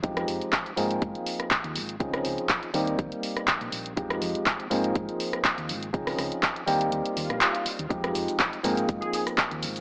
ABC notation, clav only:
X:1
M:4/4
L:1/8
Q:"Swing 16ths" 1/4=122
K:Fm
V:1 name="Clav"
[F,A,CEG]3 [F,B,CEA]4- [F,B,CEA] | [F,CDEA]3 [G,B,CEG]4- [G,B,CEG] | [F,A,CEG]3 [F,B,CEA]4- [F,B,CEA] | [F,CDEA]3 [G,B,CEG]4- [G,B,CEG] |
[F,A,CEG]3 [F,B,CEA]4- [F,B,CEA] |]